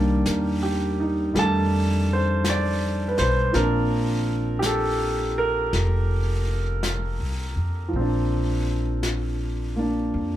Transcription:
0.00 0.22 C2 medium
0.00 1.32 D#3 soft
0.00 1.33 G3 soft
0.00 1.35 A#3 soft
0.00 1.34 D4 soft
0.00 0.97 G5 medium
0.25 1.32 E2 medium
0.25 0.96 A#4 soft
0.25 brush sweep soft
0.25 snare soft
0.25 hi-hat pedal soft
0.63 1.20 G4 soft
1.00 1.57 D#4 soft
1.34 3.14 F2 medium
1.34 3.53 D#3 soft
1.34 3.54 G3 soft
1.34 3.54 A3 soft
1.34 3.53 D4 soft
1.34 brush sweep soft
1.34 snare soft
1.39 2.07 A5 medium
2.13 2.47 C5 medium
2.44 brush sweep soft
2.44 snare soft
2.44 hi-hat pedal soft
2.49 3.13 D5 medium
3.08 3.18 B4 medium
3.18 3.51 B1 medium
3.18 3.55 C5 medium
3.18 snare soft
3.53 5.70 A#1 medium
3.53 7.87 F3 soft
3.53 7.94 A#3 soft
3.53 7.94 C4 soft
3.53 7.95 D4 medium
3.53 4.63 A#4 medium
3.53 brush sweep soft
3.53 snare soft
4.59 4.64 G4 medium
4.59 brush sweep soft
4.59 snare soft
4.59 hi-hat pedal soft
4.66 5.35 A4 medium
5.38 10.37 A#4 medium
5.73 7.16 F1 medium
5.73 brush sweep soft
5.73 snare soft
6.83 brush sweep soft
6.83 snare soft
6.83 hi-hat pedal medium
7.20 7.54 C2 medium
7.56 7.91 F2 medium
7.88 10.37 F3 soft
7.93 10.10 A#1 medium
7.93 10.37 C4 soft
7.93 brush sweep soft
8.00 9.77 D4 soft
9.03 brush sweep soft
9.03 snare soft
9.03 hi-hat pedal soft
9.76 10.37 A#3 soft
9.76 10.37 D4 soft
10.13 10.37 F2 medium
10.13 brush sweep soft

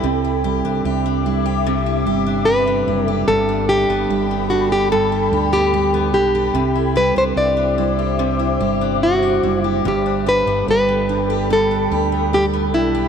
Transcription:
0.00 0.61 C2 medium
0.00 0.12 G2 medium
0.00 1.65 C3 medium
0.00 0.12 B3 medium
0.00 3.25 C4 medium
0.00 0.24 D4 medium
0.00 2.56 E4 medium
0.00 0.44 G4 medium
0.00 3.25 D6 medium
0.04 0.83 C3 medium
0.04 3.25 E5 medium
0.24 1.25 E4 medium
0.44 1.24 G3 medium
0.44 0.85 G4 medium
0.64 0.84 C2 medium
0.64 1.05 D4 medium
0.85 2.02 C2 medium
0.85 1.65 C3 medium
0.85 1.45 G4 medium
1.06 2.26 D4 medium
1.25 2.05 G3 medium
1.25 1.85 E4 medium
1.46 2.06 G4 medium
1.66 2.45 C3 medium
1.66 3.37 C3 medium
1.86 2.86 E4 medium
2.05 2.83 G1 medium
2.05 2.85 G3 medium
2.05 2.47 G4 medium
2.27 2.67 D4 medium
2.45 3.26 C3 medium
2.45 3.07 G4 medium
2.45 3.06 B4 medium
2.67 3.49 D4 medium
2.87 3.25 F#1 medium
2.87 3.26 G3 medium
2.87 3.37 E4 medium
3.06 3.69 G4 medium
3.06 3.27 A4 medium
3.28 3.85 G1 loud
3.28 4.91 G2 medium
3.28 4.08 G3 medium
3.28 3.69 A4 medium
3.28 6.51 A4 medium
3.28 6.52 G5 medium
3.28 6.52 B5 medium
3.49 4.50 D4 medium
3.68 4.49 D4 medium
3.68 4.47 G4 loud
3.68 4.10 G4 medium
3.88 4.08 G1 medium
3.88 4.30 B3 medium
4.09 5.28 G1 medium
4.09 4.90 G3 medium
4.09 4.72 G4 medium
4.31 5.51 B3 medium
4.50 5.12 D4 medium
4.50 5.31 D4 medium
4.50 4.72 F#4 medium
4.72 5.32 G4 medium
4.72 4.92 G4 medium
4.92 6.63 G2 medium
4.92 5.71 G3 medium
4.92 5.49 A4 medium
5.12 6.14 D4 medium
5.32 6.13 D2 medium
5.32 6.12 D4 soft
5.32 5.73 G4 medium
5.52 5.93 B3 medium
5.52 6.13 G4 medium
5.73 6.52 G3 medium
5.73 6.34 G4 medium
5.94 6.63 B3 medium
6.13 6.52 B1 medium
6.13 6.53 D4 soft
6.13 6.75 D4 medium
6.13 6.96 G4 medium
6.35 6.95 G4 medium
6.54 7.12 C2 medium
6.54 8.18 C3 medium
6.54 9.81 C3 medium
6.54 9.82 C5 medium
6.54 9.81 E5 medium
6.54 9.82 D6 medium
6.75 7.77 E4 medium
6.96 7.76 G3 soft
6.96 7.37 G4 medium
6.96 7.17 B4 medium
7.15 7.35 C2 medium
7.15 7.56 D4 medium
7.15 7.23 C5 medium
7.36 8.56 C2 loud
7.36 8.98 E4 medium
7.36 7.98 G4 medium
7.36 8.16 D5 medium
7.57 8.81 D4 medium
7.78 8.59 G3 medium
7.78 8.38 E4 medium
7.99 8.60 G4 medium
8.19 9.93 C3 medium
8.19 9.81 C4 soft
8.39 9.42 E4 medium
8.60 9.39 G1 medium
8.60 9.43 G3 medium
8.60 9.64 G4 medium
8.81 9.22 D4 medium
9.03 9.83 E4 medium
9.03 9.65 F#4 medium
9.23 10.06 D4 medium
9.43 9.82 F#1 medium
9.43 9.84 G3 soft
9.43 9.93 E4 medium
9.64 9.88 E4 medium
9.64 10.26 G4 medium
9.84 10.43 G1 medium
9.84 11.49 G2 medium
9.84 10.67 G3 medium
9.84 10.28 G4 medium
9.84 13.08 A4 medium
9.84 13.08 G5 medium
9.84 13.08 B5 medium
10.06 11.09 D4 medium
10.26 11.08 D4 soft
10.26 10.68 G4 medium
10.26 10.66 B4 loud
10.46 10.66 G1 medium
10.46 10.87 B3 medium
10.67 11.87 G1 loud
10.67 11.49 G3 medium
10.67 11.29 G4 medium
10.67 11.48 B4 medium
10.89 12.11 B3 soft
11.09 11.71 D4 medium
11.09 11.90 D4 soft
11.30 11.91 G4 medium
11.50 13.08 G2 medium
11.50 12.31 G3 medium
11.50 12.34 A4 medium
11.71 12.73 D4 medium
11.91 12.73 D2 medium
11.91 12.72 D4 soft
11.91 12.33 G4 medium
12.12 12.52 B3 medium
12.32 13.08 G3 medium
12.32 12.94 G4 medium
12.32 12.45 G4 medium
12.53 13.08 B3 medium
12.73 13.08 B1 medium
12.73 13.08 D4 medium
12.73 13.08 E4 medium
12.95 13.08 G4 medium

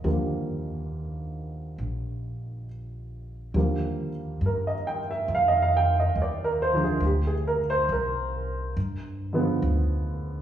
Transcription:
0.00 3.53 D3 soft
0.00 0.04 G3 soft
0.00 0.05 A#3 soft
0.00 3.57 C4 soft
0.00 2.66 G4 medium
0.00 2.66 A#4 soft
0.00 2.66 D#5 medium
0.04 1.75 D#2 medium
0.04 3.54 F3 soft
0.04 3.54 G3 soft
0.04 3.55 A#3 soft
1.78 3.51 A#1 medium
3.54 4.39 D#2 medium
3.54 4.08 D3 soft
3.54 4.09 F3 soft
3.54 4.09 G3 soft
3.54 4.09 A#3 soft
4.41 5.26 G2 medium
4.46 4.73 A#4 medium
4.67 4.98 D#5 medium
4.87 5.07 G5 medium
5.11 5.26 E5 medium
5.28 6.13 F2 medium
5.35 5.51 F5 medium
5.48 5.57 D#5 medium
5.62 5.89 F5 medium
5.77 5.96 G5 medium
6.00 6.14 D#5 medium
6.16 6.99 D#2 medium
6.22 6.47 D5 medium
6.44 6.73 A#4 medium
6.62 6.81 C5 medium
6.73 6.99 D3 soft
6.73 6.99 F3 soft
6.73 6.99 G#3 soft
6.73 7.00 D4 medium
6.84 6.99 G#4 medium
7.00 7.85 D2 medium
7.05 7.32 G4 medium
7.27 7.58 G#4 medium
7.47 7.67 A#4 medium
7.70 7.86 C5 medium
7.89 8.73 C2 medium
7.89 8.73 A#4 medium
8.77 9.59 G2 medium
9.33 10.41 D3 medium
9.33 10.42 F3 medium
9.33 10.42 G#3 medium
9.33 10.42 B3 medium
9.62 10.42 D2 medium

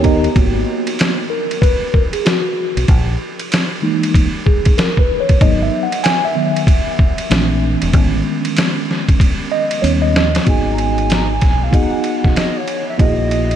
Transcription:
0.00 0.27 D#2 medium
0.00 0.27 B3 medium
0.00 0.27 D#4 medium
0.00 0.28 G4 medium
0.00 0.34 A#5 medium
0.04 0.28 A#4 medium
0.04 0.29 D#5 medium
0.04 kick medium
0.04 ride medium
0.24 ride soft
0.35 0.63 G#1 loud
0.35 1.26 A#3 medium
0.35 1.27 B3 soft
0.35 1.27 F#4 medium
0.35 kick loud
0.35 ride medium
0.87 ride medium
0.99 snare loud
0.99 hi-hat pedal medium
0.99 ride medium
1.30 1.60 A#4 medium
1.51 ride soft
1.62 1.91 B4 loud
1.62 kick loud
1.62 ride medium
1.94 2.03 A#4 medium
1.94 kick medium
2.13 2.26 G#4 medium
2.13 ride medium
2.25 2.85 F#4 medium
2.25 snare medium
2.25 hi-hat pedal soft
2.25 ride medium
2.77 2.87 B1 medium
2.77 ride medium
2.88 3.16 A#1 loud
2.88 kick loud
2.88 ride medium
3.39 ride medium
3.52 snare medium
3.52 hi-hat pedal medium
3.52 ride medium
3.82 4.28 E3 medium
3.82 4.28 G#3 medium
3.82 4.28 A#3 medium
3.82 4.29 D#4 medium
4.03 ride medium
4.14 kick loud
4.14 ride medium
4.46 4.79 G#4 medium
4.46 kick medium
4.65 kick medium
4.65 ride medium
4.78 5.00 A#4 medium
4.78 snare loud
4.78 hi-hat pedal soft
4.78 ride medium
4.97 5.21 B4 medium
4.97 kick medium
5.20 5.42 C#5 medium
5.29 kick medium
5.29 ride medium
5.41 5.68 G#1 loud
5.41 5.86 F#3 medium
5.41 5.86 B3 soft
5.41 5.87 D#4 medium
5.41 5.61 D#5 loud
5.41 kick loud
5.41 ride medium
5.63 5.82 E5 medium
5.83 6.05 F#5 medium
5.92 ride medium
6.04 6.24 G#5 loud
6.04 snare loud
6.04 hi-hat pedal medium
6.04 ride medium
6.25 7.79 E5 medium
6.35 6.64 D#3 medium
6.35 6.64 F#3 soft
6.35 6.64 B3 medium
6.56 ride medium
6.67 kick loud
6.67 ride medium
6.99 kick medium
7.18 ride medium
7.30 7.75 A#1 medium
7.30 7.90 E3 medium
7.30 7.91 A3 medium
7.30 7.91 C4 medium
7.30 7.91 D4 medium
7.30 snare loud
7.30 hi-hat pedal soft
7.30 ride medium
7.82 7.94 E1 medium
7.82 ride medium
7.93 8.21 A1 loud
7.93 9.79 D#3 soft
7.93 9.79 G#3 soft
7.93 9.79 B3 soft
7.93 9.80 C#4 medium
7.93 kick loud
7.93 ride medium
8.45 ride medium
8.57 snare loud
8.57 hi-hat pedal medium
8.57 ride medium
8.91 snare soft
9.09 kick medium
9.09 ride medium
9.20 kick loud
9.20 ride medium
9.52 9.81 D#5 loud
9.71 ride medium
9.82 10.37 D#2 medium
9.82 10.28 G3 medium
9.82 10.28 B3 medium
9.82 10.29 C#4 medium
9.82 9.91 C#5 medium
9.82 hi-hat pedal soft
9.82 ride medium
10.02 10.43 D#5 loud
10.16 snare medium
10.35 snare medium
10.35 ride medium
10.45 11.38 G#1 loud
10.45 11.32 B3 medium
10.45 11.32 D#4 medium
10.45 11.32 F#4 medium
10.45 11.33 G#4 medium
10.45 11.33 D#5 medium
10.45 kick loud
10.45 ride medium
10.49 10.73 G#5 loud
10.73 10.82 A#5 medium
10.78 11.14 G#5 medium
10.78 ride soft
10.98 ride soft
11.10 11.31 A#5 medium
11.10 snare loud
11.10 hi-hat pedal soft
11.10 ride medium
11.32 11.65 G#5 medium
11.41 11.69 B1 medium
11.41 kick medium
11.41 snare soft
11.41 ride medium
11.63 11.77 F5 medium
11.71 12.58 B3 medium
11.71 12.58 D#4 medium
11.71 12.59 F#4 medium
11.71 12.59 G#4 medium
11.71 12.59 D#5 medium
11.71 kick loud
11.71 ride medium
11.77 12.39 F#5 medium
12.04 ride medium
12.24 12.35 B1 medium
12.24 kick medium
12.24 snare soft
12.36 12.59 D#5 medium
12.36 snare medium
12.36 hi-hat pedal soft
12.36 ride medium
12.57 12.88 C#5 medium
12.68 ride medium
12.89 12.99 E5 medium
12.98 13.56 A#1 loud
12.98 13.56 A#3 medium
12.98 13.56 E4 medium
12.98 13.56 F#4 medium
12.98 13.56 G#4 medium
12.98 13.56 D#5 medium
12.98 kick loud
12.98 ride medium
13.31 ride medium
13.51 ride soft

